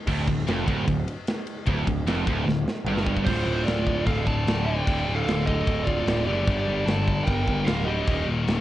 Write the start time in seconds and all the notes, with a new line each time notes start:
0.07 D1 D2, kick, crash
0.27 D1 D2, kick, ride
0.38 snare
0.47 F1 F2, snare, ride
0.66 D1 D2, kick, ride
0.87 D1 D2, kick, ride
1.08 ride
1.27 snare, ride
1.47 ride
1.66 D1 D2, kick, ride
1.87 D1 D2, kick, ride
2.06 F1 F2, snare, ride
2.26 D1 D2, kick, ride
2.46 D1 D2, snare
2.68 snare
2.84 G1 G2, mid tom
2.98 snare
3.07 kick
3.17 kick
3.25 D1 D2 A2 C5, kick, crash
3.29 D3 F4
3.46 D1
3.64 D1 F4 D5, snare, crash
3.87 kick
4.06 D1 A4 F5, kick, crash
4.25 D1 D5 A5, kick
4.47 D1, snare, crash
4.66 D2 A2 D3 D5 G5
4.86 D1 D2 A2 D3, kick, crash
5.07 D1
5.15 A4 F5
5.26 D1, snare, crash
5.46 A4 D#5, kick
5.67 D1, kick, crash
5.84 F4 D5, kick
6.07 D1, snare, crash
6.26 F#1 A2 D3 G4 D5
6.30 D2
6.47 G1 G2 D3 G3, kick, crash
6.67 G1
6.85 G1 D5 A5, snare, crash
7.08 kick
7.24 G1 A#4 G5, kick, crash
7.47 G1, kick
7.65 D1 A#4 F5, snare, crash
7.86 D3 G3 G4 D#5
7.91 G2
8.07 D#1 D#2 A#2 D#3, kick, crash
8.27 D#1
8.48 D#1, snare, crash